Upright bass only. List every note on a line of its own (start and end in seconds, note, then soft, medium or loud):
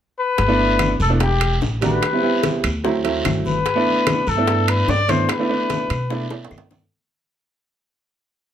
0.39 0.96 G1 medium
1.00 1.57 E1 medium
1.61 1.98 A1 medium
2.63 3.21 D2 medium
3.25 3.61 G1 medium
4.27 4.84 G2 medium
4.88 5.24 G2 medium
5.90 6.47 B2 medium
6.51 6.87 G2 medium